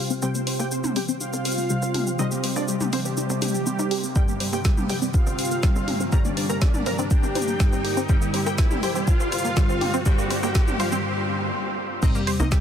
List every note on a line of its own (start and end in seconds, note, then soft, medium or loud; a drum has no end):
0.00 0.19 C3 medium
0.00 11.04 C3 medium
0.00 0.19 G3 medium
0.00 0.19 C4 medium
0.00 0.13 F4 loud
0.00 4.12 G4 medium
0.00 4.12 C5 medium
0.00 0.13 F5 loud
0.00 4.12 G5 medium
0.00 4.12 C6 medium
0.00 riser medium
0.10 0.16 C4 loud
0.10 shaker soft
0.22 0.33 C2 loud
0.22 1.67 C3 loud
0.22 1.67 G3 medium
0.22 1.67 C4 loud
0.22 0.28 C4 medium
0.22 0.29 G4 medium
0.22 0.29 G5 loud
0.22 shaker medium
0.35 0.41 A#3 medium
0.35 0.42 C4 medium
0.35 0.42 C5 medium
0.35 shaker soft
0.47 0.54 C4 medium
0.47 0.54 C5 medium
0.47 0.51 C5 medium
0.47 open hi-hat loud
0.59 0.93 C2 loud
0.59 0.65 A#3 medium
0.59 0.66 G4 medium
0.59 0.66 G5 medium
0.59 shaker soft
0.71 0.78 C4 medium
0.71 0.77 G4 medium
0.71 0.79 C5 medium
0.71 shaker medium
0.84 0.91 C4 medium
0.84 0.91 C5 medium
0.84 mid tom medium
0.84 shaker soft
0.96 1.30 G1 medium
0.96 1.00 C4 medium
0.96 1.03 G4 medium
0.96 1.03 G5 medium
0.96 open hi-hat loud
0.96 shaker soft
1.08 1.15 C4 medium
1.08 1.14 C4 loud
1.08 1.15 C5 medium
1.08 shaker soft
1.21 1.27 D#4 medium
1.21 2.09 F4 loud
1.21 2.09 F5 loud
1.21 shaker medium
1.33 1.67 C2 medium
1.33 1.37 C4 medium
1.33 shaker soft
1.45 1.49 C5 medium
1.45 open hi-hat loud
1.45 shaker soft
1.51 shaker soft
1.58 1.64 A#3 medium
1.58 shaker soft
1.70 2.16 C3 medium
1.70 2.16 G3 medium
1.70 2.16 C4 medium
1.70 1.76 G4 medium
1.70 shaker medium
1.82 2.16 C2 medium
1.82 1.91 C4 medium
1.82 shaker soft
1.94 2.03 G4 medium
1.94 open hi-hat medium
1.94 mid tom medium
2.07 2.13 C4 loud
2.07 shaker soft
2.19 2.53 C2 loud
2.19 3.64 C3 loud
2.19 3.64 G3 medium
2.19 2.25 C4 medium
2.19 3.64 C4 loud
2.19 2.26 D#4 loud
2.19 2.26 D#5 loud
2.19 shaker medium
2.31 2.38 G3 medium
2.31 2.37 A#3 medium
2.31 2.38 G4 medium
2.31 shaker soft
2.44 2.51 G3 medium
2.44 2.51 G4 medium
2.44 2.47 C5 medium
2.44 open hi-hat loud
2.44 shaker soft
2.56 2.90 C2 loud
2.56 2.62 A#3 medium
2.56 2.63 D4 loud
2.56 2.63 D5 medium
2.56 shaker soft
2.68 2.75 G3 medium
2.68 2.74 G4 medium
2.68 2.75 G4 medium
2.68 shaker medium
2.81 2.87 G3 medium
2.81 2.88 G4 medium
2.81 mid tom medium
2.81 shaker soft
2.93 3.27 C2 loud
2.93 3.00 C4 medium
2.93 2.96 C4 medium
2.93 3.00 C5 medium
2.93 open hi-hat medium
2.93 shaker soft
3.05 3.12 G3 medium
3.05 3.11 C4 loud
3.05 3.12 G4 medium
3.05 shaker soft
3.17 4.06 G3 loud
3.17 3.23 D#4 medium
3.17 4.06 G4 loud
3.17 shaker medium
3.30 3.64 C2 medium
3.30 3.33 C4 medium
3.30 shaker soft
3.42 3.48 G4 medium
3.42 open hi-hat loud
3.42 mid tom medium
3.42 shaker soft
3.48 shaker medium
3.54 3.60 C4 medium
3.54 shaker soft
3.67 3.76 C4 loud
3.67 shaker medium
3.79 4.13 G1 loud
3.79 3.88 D#4 medium
3.79 shaker soft
3.91 3.95 G4 loud
3.91 open hi-hat loud
4.04 4.09 C4 medium
4.04 shaker soft
4.16 4.26 C2 loud
4.16 5.60 G2 loud
4.16 5.60 D3 medium
4.16 5.60 G3 loud
4.16 4.22 C4 medium
4.16 11.00 G4 medium
4.16 4.23 G4 loud
4.16 11.00 A#4 medium
4.16 11.00 D5 medium
4.16 4.23 G5 loud
4.16 11.00 A#5 medium
4.16 kick loud
4.16 shaker medium
4.28 4.35 G3 medium
4.28 4.34 A#3 medium
4.28 4.35 G4 medium
4.28 shaker soft
4.40 4.47 G3 medium
4.40 4.47 G4 medium
4.40 4.44 C5 medium
4.40 open hi-hat loud
4.53 4.87 C2 loud
4.53 4.59 A#3 medium
4.53 4.60 G4 medium
4.53 4.60 G5 medium
4.53 shaker soft
4.65 4.72 G3 medium
4.65 4.72 G4 medium
4.65 4.71 G4 medium
4.65 kick loud
4.65 snare loud
4.65 shaker medium
4.77 4.84 G3 medium
4.77 4.84 G4 medium
4.77 mid tom medium
4.77 shaker soft
4.89 5.24 G1 medium
4.89 4.96 G4 medium
4.89 4.98 C5 medium
4.89 4.96 G5 medium
4.89 open hi-hat medium
4.89 shaker soft
5.02 5.09 G3 medium
5.02 5.08 C4 loud
5.02 5.09 G4 medium
5.02 shaker soft
5.14 5.20 D4 medium
5.14 6.03 F4 loud
5.14 6.03 F5 loud
5.14 kick loud
5.14 shaker medium
5.27 5.60 C2 medium
5.27 5.30 C4 medium
5.27 shaker soft
5.39 5.42 C5 medium
5.39 open hi-hat loud
5.39 shaker soft
5.45 shaker medium
5.51 5.57 A#3 medium
5.51 shaker soft
5.63 6.10 G2 medium
5.63 6.10 D3 medium
5.63 6.10 G3 medium
5.63 5.69 G4 medium
5.63 kick loud
5.63 snare loud
5.63 shaker medium
5.76 6.10 C2 medium
5.76 5.84 C4 medium
5.76 shaker soft
5.88 5.97 G4 medium
5.88 open hi-hat medium
5.88 mid tom medium
6.00 6.06 C4 loud
6.00 shaker soft
6.12 6.46 C2 loud
6.12 7.57 G2 loud
6.12 7.57 D3 medium
6.12 7.57 G3 loud
6.12 6.18 C4 medium
6.12 6.20 A#4 loud
6.12 6.19 A#5 loud
6.12 kick loud
6.12 shaker medium
6.25 6.31 A#3 medium
6.25 6.32 D4 medium
6.25 6.32 D5 medium
6.25 shaker soft
6.37 6.44 D4 medium
6.37 6.41 C5 medium
6.37 6.44 D5 medium
6.37 open hi-hat loud
6.49 6.83 C2 loud
6.49 6.55 A#3 medium
6.49 6.56 A#4 loud
6.49 6.56 A#5 medium
6.49 shaker soft
6.62 6.69 D4 medium
6.62 6.68 G4 medium
6.62 6.69 D5 medium
6.62 kick loud
6.62 snare loud
6.62 shaker medium
6.74 6.81 D4 medium
6.74 6.81 D5 medium
6.74 mid tom loud
6.74 shaker soft
6.86 7.20 C2 loud
6.86 6.93 A#4 medium
6.86 6.95 C5 medium
6.86 6.93 A#5 medium
6.86 open hi-hat medium
6.86 shaker soft
6.99 7.05 C4 loud
6.99 7.06 D4 medium
6.99 7.06 D5 medium
6.99 shaker soft
7.11 7.17 D4 medium
7.11 8.00 G4 loud
7.11 7.99 G5 loud
7.11 kick loud
7.11 shaker medium
7.23 7.57 G1 medium
7.23 7.27 C4 medium
7.23 shaker soft
7.35 7.39 C5 medium
7.35 open hi-hat loud
7.35 mid tom medium
7.35 shaker soft
7.42 shaker medium
7.48 7.54 A#3 medium
7.48 shaker soft
7.60 8.06 G2 medium
7.60 8.06 D3 medium
7.60 8.06 G3 medium
7.60 7.66 G4 medium
7.60 kick loud
7.60 snare loud
7.60 shaker medium
7.72 7.83 C2 medium
7.72 7.81 C4 medium
7.72 shaker soft
7.85 7.94 G4 medium
7.85 open hi-hat medium
7.97 8.03 C4 loud
7.97 shaker soft
8.09 8.20 C2 loud
8.09 9.54 G2 loud
8.09 9.54 D3 medium
8.09 9.54 G3 loud
8.09 8.15 C4 medium
8.09 8.16 G4 loud
8.09 8.16 G5 loud
8.09 kick loud
8.09 shaker medium
8.22 8.29 G3 medium
8.22 8.27 A#3 medium
8.22 8.29 G4 medium
8.22 shaker soft
8.34 8.41 G3 medium
8.34 8.41 G4 medium
8.34 8.37 C5 medium
8.34 open hi-hat loud
8.46 8.80 C2 loud
8.46 8.52 A#3 medium
8.46 8.53 G4 loud
8.46 8.53 G5 loud
8.46 shaker soft
8.58 8.65 G3 medium
8.58 8.64 G4 medium
8.58 8.65 G4 medium
8.58 kick loud
8.58 snare loud
8.58 shaker medium
8.71 8.78 G3 medium
8.71 8.78 G4 medium
8.71 mid tom loud
8.71 shaker soft
8.83 9.17 G1 medium
8.83 8.90 G4 medium
8.83 8.92 C5 medium
8.83 8.90 G5 medium
8.83 open hi-hat medium
8.83 shaker soft
8.95 9.02 G3 medium
8.95 9.01 C4 loud
8.95 9.02 G4 medium
8.95 shaker soft
9.07 9.14 D4 medium
9.07 9.96 F4 loud
9.07 9.96 F5 loud
9.07 kick loud
9.07 shaker medium
9.20 9.54 C2 medium
9.20 9.24 C4 medium
9.20 shaker soft
9.32 9.36 C5 medium
9.32 open hi-hat loud
9.32 shaker soft
9.38 shaker medium
9.45 9.50 A#3 medium
9.45 shaker soft
9.57 10.03 G2 medium
9.57 10.03 D3 medium
9.57 10.03 G3 medium
9.57 9.63 G4 medium
9.57 kick loud
9.57 snare loud
9.57 shaker medium
9.69 10.03 C2 medium
9.69 9.78 C4 medium
9.69 shaker soft
9.81 9.90 G4 medium
9.81 open hi-hat medium
9.81 mid tom medium
9.94 10.00 C4 loud
9.94 shaker soft
10.06 10.40 C2 loud
10.06 11.51 G2 loud
10.06 11.51 D3 medium
10.06 11.51 G3 loud
10.06 10.12 C4 medium
10.06 10.13 G4 loud
10.06 10.13 G5 loud
10.06 kick loud
10.06 shaker medium
10.18 10.25 G3 medium
10.18 10.24 A#3 medium
10.18 10.25 G4 medium
10.18 shaker soft
10.30 10.38 G3 medium
10.30 10.38 G4 medium
10.30 10.34 C5 medium
10.30 open hi-hat loud
10.30 shaker soft
10.43 10.77 C2 loud
10.43 10.49 A#3 medium
10.43 10.50 G4 medium
10.43 10.50 G5 medium
10.43 shaker soft
10.55 10.62 G3 medium
10.55 10.62 G4 medium
10.55 10.61 G4 medium
10.55 kick loud
10.55 snare loud
10.55 shaker medium
10.68 10.74 G3 medium
10.68 10.74 G4 medium
10.68 mid tom loud
10.68 shaker soft
10.80 11.04 C2 loud
10.80 10.87 F4 medium
10.80 10.89 C5 medium
10.80 10.87 F5 medium
10.80 open hi-hat medium
10.80 shaker soft
10.92 10.99 G3 medium
10.92 10.98 C4 loud
10.92 10.99 G4 medium
10.92 shaker soft
12.03 12.13 C2 loud
12.03 12.61 C3 loud
12.03 12.61 G3 medium
12.03 12.61 C4 loud
12.03 12.09 C4 medium
12.03 12.10 D#4 loud
12.03 12.61 G4 medium
12.03 12.61 C5 medium
12.03 12.10 D#5 loud
12.03 kick loud
12.03 crash loud
12.03 sub drop medium
12.03 shaker medium
12.15 12.22 G3 medium
12.15 12.21 A#3 medium
12.15 12.22 G4 medium
12.15 shaker soft
12.27 12.34 G3 medium
12.27 12.34 G4 medium
12.27 12.31 C5 medium
12.27 open hi-hat loud
12.40 12.61 C2 loud
12.40 12.46 A#3 medium
12.40 12.47 D#4 loud
12.40 12.46 D#5 medium
12.40 mid tom medium
12.40 shaker soft
12.52 12.59 G3 medium
12.52 12.58 G4 medium
12.52 12.59 G4 medium
12.52 kick loud
12.52 snare loud
12.52 shaker medium